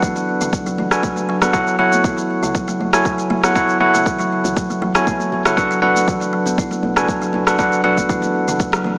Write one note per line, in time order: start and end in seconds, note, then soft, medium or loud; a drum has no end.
0.00 0.88 D4 medium
0.00 0.15 E4 medium
0.00 0.88 F#4 medium
0.00 0.88 A4 medium
0.00 0.88 B4 medium
0.00 0.88 F#5 loud
0.00 kick loud
0.00 low conga loud
0.00 cabasa medium
0.16 muted conga soft
0.16 high conga medium
0.16 cabasa soft
0.41 0.51 F#1 medium
0.41 0.53 C#3 loud
0.41 muted conga soft
0.41 low conga medium
0.41 cabasa medium
0.53 0.60 F#3 medium
0.53 kick loud
0.53 high conga medium
0.53 cabasa medium
0.66 0.76 B1 medium
0.66 0.77 F#3 medium
0.66 muted conga soft
0.66 cabasa soft
0.78 high conga loud
0.78 low conga medium
0.91 1.39 D4 medium
0.91 1.39 F#4 medium
0.91 1.39 A4 medium
0.91 1.39 B4 medium
0.91 1.39 G#5 loud
0.91 cross-stick medium
0.91 muted conga soft
0.91 cabasa medium
1.03 1.15 F#3 medium
1.03 kick loud
1.03 high conga medium
1.03 cabasa medium
1.16 1.28 F#3 medium
1.16 high conga medium
1.16 cabasa soft
1.29 1.36 F#3 medium
1.29 muted conga soft
1.42 1.52 F#1 loud
1.42 1.53 B3 medium
1.42 1.52 D4 medium
1.42 1.52 F#4 medium
1.42 1.52 A4 medium
1.42 1.52 B4 medium
1.42 1.52 F#5 medium
1.42 cross-stick medium
1.42 cabasa medium
1.53 1.65 F#1 loud
1.53 1.66 F#3 loud
1.53 1.75 E4 medium
1.53 1.75 F#4 medium
1.53 1.75 A4 medium
1.53 1.75 C#5 medium
1.53 1.75 F#5 loud
1.53 kick loud
1.53 muted conga soft
1.53 cabasa medium
1.67 1.78 F#3 medium
1.67 cabasa soft
1.79 1.90 F#1 medium
1.79 1.86 F#3 loud
1.79 2.90 E4 medium
1.79 2.90 F#4 medium
1.79 2.90 A4 medium
1.79 2.90 C#5 medium
1.79 2.90 F#5 loud
1.79 muted conga soft
1.92 2.04 B3 medium
1.92 high conga medium
1.92 cabasa medium
2.04 2.16 E4 medium
2.04 kick loud
2.04 low conga medium
2.04 cabasa medium
2.18 muted conga medium
2.18 high conga medium
2.18 cabasa soft
2.42 2.52 C#2 medium
2.42 2.54 C#3 loud
2.42 muted conga soft
2.42 cabasa medium
2.55 2.66 F#1 medium
2.55 2.62 F#3 medium
2.55 kick loud
2.55 cabasa medium
2.68 2.79 F#3 loud
2.68 muted conga medium
2.68 high conga medium
2.68 cabasa soft
2.80 3.27 F#1 loud
2.80 high conga medium
2.93 3.40 E4 medium
2.93 3.40 F#4 medium
2.93 3.40 A4 medium
2.93 3.40 C#5 medium
2.93 3.40 G#5 loud
2.93 cross-stick medium
2.93 muted conga soft
2.93 cabasa medium
3.05 3.17 F#3 loud
3.05 kick loud
3.05 high conga medium
3.05 cabasa medium
3.18 3.29 F#3 medium
3.18 cabasa soft
3.30 3.51 F#1 medium
3.30 3.37 F#3 medium
3.30 muted conga soft
3.30 high conga loud
3.44 3.55 B3 medium
3.44 3.54 E4 medium
3.44 3.54 F#4 medium
3.44 3.54 A4 medium
3.44 3.54 C#5 medium
3.44 3.54 F#5 medium
3.44 cross-stick medium
3.44 cabasa medium
3.55 3.67 F#1 loud
3.55 3.77 E4 medium
3.55 3.68 E4 medium
3.55 3.77 F#4 medium
3.55 3.77 A4 medium
3.55 3.77 C#5 medium
3.55 3.77 F#5 loud
3.55 kick loud
3.55 muted conga medium
3.55 cabasa medium
3.69 cabasa soft
3.80 3.92 F#1 medium
3.80 4.92 E4 medium
3.80 4.92 F#4 medium
3.80 4.92 A4 medium
3.80 4.92 C#5 medium
3.80 4.92 F#5 medium
3.80 muted conga soft
3.94 4.06 C#3 loud
3.94 high conga medium
3.94 cabasa medium
4.06 4.13 F#3 medium
4.06 kick loud
4.06 low conga loud
4.06 cabasa medium
4.19 4.30 F#3 loud
4.19 muted conga soft
4.19 high conga medium
4.19 cabasa soft
4.44 4.54 C#2 medium
4.44 muted conga soft
4.44 low conga medium
4.44 cabasa medium
4.56 4.68 F#3 loud
4.56 kick loud
4.56 high conga medium
4.56 cabasa medium
4.70 4.80 F#1 medium
4.70 4.81 F#3 medium
4.70 muted conga medium
4.70 cabasa soft
4.82 4.93 F#1 loud
4.82 4.89 F#3 loud
4.82 high conga medium
4.82 low conga medium
4.94 5.07 B3 medium
4.94 5.42 E4 medium
4.94 5.42 F#4 medium
4.94 5.42 A4 medium
4.94 5.42 C#5 medium
4.94 5.42 G#5 loud
4.94 cross-stick medium
4.94 muted conga soft
4.94 cabasa medium
5.07 5.19 E4 medium
5.07 kick loud
5.07 high conga medium
5.07 cabasa medium
5.20 high conga medium
5.20 cabasa soft
5.32 5.43 E1 loud
5.32 muted conga soft
5.45 5.57 C#3 loud
5.45 5.56 E4 medium
5.45 5.56 F#4 medium
5.45 5.56 A4 medium
5.45 5.55 C#5 medium
5.45 5.56 F#5 medium
5.45 cross-stick medium
5.45 cabasa medium
5.57 5.68 B1 medium
5.57 5.65 F#3 medium
5.57 5.79 D4 medium
5.57 5.79 F#4 medium
5.57 5.79 A4 medium
5.57 5.79 B4 medium
5.57 5.79 F#5 loud
5.57 kick loud
5.57 muted conga medium
5.57 cabasa medium
5.71 5.81 F#3 loud
5.71 cabasa soft
5.82 5.93 B1 medium
5.82 6.93 D4 medium
5.82 6.93 F#4 medium
5.82 6.93 A4 medium
5.82 6.93 B4 medium
5.82 6.93 F#5 loud
5.82 muted conga soft
5.95 high conga medium
5.95 cabasa medium
6.08 6.20 F#3 loud
6.08 kick loud
6.08 low conga loud
6.08 cabasa medium
6.21 6.32 F#3 medium
6.21 muted conga medium
6.21 high conga medium
6.21 cabasa soft
6.33 6.40 F#3 loud
6.46 6.56 F#1 medium
6.46 6.58 B3 medium
6.46 muted conga soft
6.46 cabasa medium
6.58 6.69 B1 medium
6.58 6.70 E4 medium
6.58 kick loud
6.58 cabasa medium
6.71 muted conga medium
6.71 high conga medium
6.71 cabasa soft
6.83 7.30 B1 loud
6.83 high conga medium
6.96 7.08 C#3 loud
6.96 7.44 D4 medium
6.96 7.44 F#4 medium
6.96 7.44 A4 medium
6.96 7.44 B4 medium
6.96 7.44 G#5 medium
6.96 cross-stick medium
6.96 muted conga soft
6.96 cabasa medium
7.07 7.16 F#3 medium
7.07 kick loud
7.07 high conga medium
7.07 cabasa medium
7.22 7.32 F#3 loud
7.22 cabasa soft
7.33 7.54 B1 medium
7.33 muted conga medium
7.33 high conga loud
7.47 7.57 D4 medium
7.47 7.57 F#4 medium
7.47 7.57 A4 medium
7.47 7.57 B4 medium
7.47 7.57 F#5 medium
7.47 cross-stick medium
7.47 cabasa medium
7.58 7.70 B1 loud
7.58 7.71 F#3 loud
7.58 7.81 D4 medium
7.58 7.81 F#4 medium
7.58 7.81 A4 medium
7.58 7.81 B4 medium
7.58 7.81 F#5 loud
7.58 kick loud
7.58 muted conga medium
7.58 cabasa medium
7.72 7.83 F#3 medium
7.72 cabasa soft
7.84 7.95 B1 medium
7.84 7.91 F#3 loud
7.84 8.95 D4 medium
7.84 8.95 F#4 medium
7.84 8.95 A4 medium
7.84 8.95 B4 medium
7.84 8.95 F#5 loud
7.84 muted conga soft
7.97 8.09 B3 medium
7.97 kick medium
7.97 high conga medium
7.97 cabasa medium
8.09 8.21 E4 medium
8.09 kick loud
8.09 low conga loud
8.09 cabasa medium
8.22 muted conga soft
8.22 high conga medium
8.22 cabasa soft
8.47 8.74 F#1 medium
8.47 8.59 C#3 loud
8.47 muted conga soft
8.47 low conga medium
8.47 cabasa medium
8.59 8.67 F#3 medium
8.59 kick loud
8.59 high conga medium
8.59 cabasa medium
8.72 8.86 A1 loud
8.72 8.84 F#3 loud
8.72 cross-stick medium
8.72 muted conga medium
8.72 cabasa soft
8.84 8.98 F#1 medium
8.84 high conga medium
8.84 low conga loud